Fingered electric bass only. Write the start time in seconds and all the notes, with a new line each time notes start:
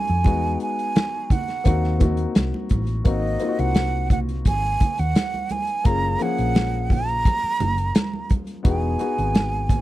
0.09 F2
0.26 E2
1.66 D#2
2.36 C2
2.71 A1
3.06 G#1
3.59 C2
4.46 G#1
4.99 D#2
5.86 F#1
6.39 A#1
7.44 muted fingered electric bass stroke
7.61 F#1
8.65 E1
9.18 G#1